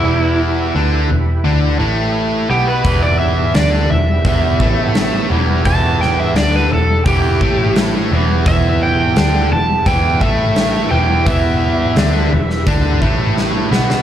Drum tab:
HH |----------------|o---o---o---o---|o---o---o---o---|o---o---o---o---|
SD |----------------|----o-------o---|--o-o-------o---|----o-------o---|
BD |----------------|o-------o-o-----|o-------o-o-----|o-------o-o-----|

HH |o---o---o-------|
SD |----o--o----o-oo|
BD |o-------o-o-----|